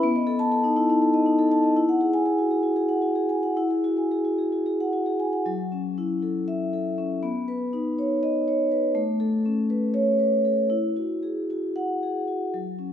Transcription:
0.03 1.72 B3 loud
0.16 0.35 D#5 medium
0.27 0.47 A4 medium
0.39 0.59 A5 medium
0.52 0.72 A4 medium
0.64 0.84 D#4 medium
0.76 0.89 E4 medium
0.90 1.09 D#4 medium
1.02 1.21 A4 medium
1.14 1.33 D#5 medium
1.26 1.46 D#4 medium
1.39 1.58 A4 medium
1.52 1.71 A5 medium
1.63 1.75 D#5 medium
1.76 3.53 E4 medium
1.89 2.08 F#5 medium
2.01 2.21 G#4 medium
2.14 2.33 G#5 medium
2.26 2.46 G#4 medium
2.38 2.59 F#4 medium
2.51 2.64 G#4 medium
2.63 2.84 F#4 medium
2.76 2.97 G#4 medium
2.89 3.10 F#5 medium
3.02 3.24 F#4 medium
3.15 3.37 G#4 medium
3.29 3.51 G#5 medium
3.43 3.65 F#5 medium
3.57 5.43 E4 medium
3.71 3.92 G#4 soft
3.84 4.06 F#4 medium
3.97 4.19 G#5 medium
4.11 4.33 G#4 medium
4.25 4.47 F#4 medium
4.38 4.52 G#4 soft
4.52 4.74 F#4 soft
4.66 4.88 G#4 medium
4.80 5.02 F#5 medium
4.93 5.15 F#4 medium
5.06 5.28 G#4 medium
5.20 5.41 G#5 medium
5.33 5.46 F#5 medium
5.46 7.19 F#3 medium
5.72 6.13 C#4 soft
5.98 6.39 E4 medium
6.22 6.63 A4 medium
6.48 6.88 E5 medium
6.73 7.13 A4 soft
6.98 7.23 C#4 medium
7.23 8.92 B3 medium
7.48 7.88 B4 medium
7.73 8.13 D#4 medium
7.99 8.38 C#5 medium
8.23 8.62 D#5 medium
8.48 8.87 C#5 medium
8.72 8.96 B4 medium
8.95 10.67 A3 medium
9.20 9.60 A4 medium
9.46 9.85 C#4 medium
9.70 10.10 B4 medium
9.94 10.35 C#5 medium
10.19 10.61 B4 soft
10.45 10.71 A4 medium
10.70 12.48 E4 medium
10.96 11.39 F#4 soft
11.23 11.65 G#4 soft
11.50 11.92 F#4 soft
11.76 12.17 F#5 medium
12.03 12.43 G#4 soft
12.28 12.53 F#4 soft
12.54 12.93 F#3 medium
12.79 12.93 C#4 soft

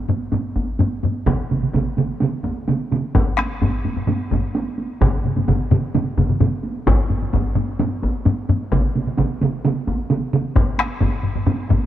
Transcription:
0.09 taiko low-mid medium
0.09 taiko high soft
0.21 taiko high soft
0.32 taiko low-mid medium
0.32 taiko high medium
0.44 taiko high soft
0.56 taiko medium
0.56 taiko high soft
0.67 taiko high soft
0.79 taiko low-mid medium
0.79 taiko high medium
0.91 taiko high soft
1.03 taiko low-mid medium
1.03 taiko high soft
1.14 taiko high soft
1.26 taiko medium
1.26 taiko mid medium
1.26 taiko high medium
1.51 taiko mid medium
1.51 taiko high soft
1.63 taiko mid medium
1.74 taiko medium
1.74 taiko mid medium
1.74 taiko high medium
1.86 taiko high soft
1.97 taiko mid medium
1.97 taiko high soft
2.09 taiko high soft
2.20 taiko mid medium
2.20 taiko high medium
2.32 taiko high soft
2.44 taiko medium
2.44 taiko high medium
2.56 taiko high soft
2.68 taiko mid medium
2.68 taiko high medium
2.80 taiko high soft
2.92 taiko mid medium
2.92 taiko high medium
3.03 taiko high soft
3.15 taiko medium
3.15 taiko low-mid medium
3.15 taiko high medium
3.27 taiko high soft
3.38 taiko rim medium
3.38 taiko high medium
3.62 taiko medium
3.62 taiko low-mid medium
3.62 taiko high medium
3.85 taiko low-mid medium
3.85 taiko high medium
3.96 taiko low-mid medium
3.96 taiko high soft
4.08 taiko low-mid medium
4.08 taiko high medium
4.20 taiko high soft
4.31 taiko medium
4.31 taiko low-mid medium
4.31 taiko high medium
4.43 taiko high soft
4.55 taiko high medium
4.66 taiko high soft
4.78 taiko high soft
4.90 taiko high soft
5.01 taiko medium
5.01 taiko low-mid medium
5.01 taiko mid medium
5.01 taiko high medium
5.13 taiko high soft
5.25 taiko low-mid medium
5.25 taiko mid medium
5.37 taiko low-mid medium
5.37 taiko mid medium
5.37 taiko high soft
5.48 taiko medium
5.48 taiko low-mid medium
5.48 taiko mid medium
5.48 taiko high medium
5.60 taiko high soft
5.71 taiko low-mid loud
5.71 taiko mid loud
5.71 taiko high medium
5.83 taiko high soft
5.94 taiko low-mid medium
5.94 taiko mid medium
5.94 taiko high medium
6.06 taiko high soft
6.17 taiko medium
6.17 taiko low-mid medium
6.17 taiko mid medium
6.17 taiko high soft
6.29 taiko low-mid medium
6.29 taiko mid medium
6.29 taiko high soft
6.40 taiko low-mid medium
6.40 taiko mid medium
6.40 taiko high medium
6.52 taiko high soft
6.63 taiko high soft
6.76 taiko high soft
6.87 taiko loud
6.87 taiko low-mid medium
6.87 taiko high medium
6.98 taiko high soft
7.10 taiko low-mid medium
7.10 taiko high soft
7.22 taiko low-mid medium
7.33 taiko medium
7.33 taiko low-mid medium
7.33 taiko high medium
7.44 taiko high soft
7.56 taiko low-mid medium
7.56 taiko high medium
7.68 taiko high soft
7.79 taiko low-mid loud
7.79 taiko high medium
7.91 taiko high soft
8.02 taiko medium
8.02 taiko high medium
8.14 taiko high soft
8.25 taiko low-mid medium
8.25 taiko high medium
8.49 taiko low-mid medium
8.49 taiko high medium
8.61 taiko high soft
8.72 taiko medium
8.72 taiko mid loud
8.72 taiko high medium
8.84 taiko high soft
8.95 taiko mid medium
8.95 taiko high soft
9.07 taiko mid medium
9.17 taiko medium
9.17 taiko mid loud
9.17 taiko high medium
9.30 taiko high soft
9.41 taiko mid loud
9.41 taiko high medium
9.53 taiko high soft
9.65 taiko mid loud
9.65 taiko high medium
9.76 taiko high soft
9.87 taiko medium
9.87 taiko high medium
9.99 taiko high soft
10.10 taiko mid medium
10.10 taiko high medium
10.33 taiko mid loud
10.33 taiko high medium
10.45 taiko high soft
10.56 taiko loud
10.56 taiko low-mid medium
10.56 taiko high medium
10.67 taiko high soft
10.78 taiko rim medium
10.78 taiko high soft
11.01 taiko medium
11.01 taiko low-mid medium
11.01 taiko high medium
11.24 taiko low-mid medium
11.35 taiko low-mid medium
11.35 taiko high soft
11.47 taiko low-mid loud
11.47 taiko high medium
11.70 taiko medium
11.70 taiko low-mid loud
11.70 taiko high medium
11.82 taiko high soft

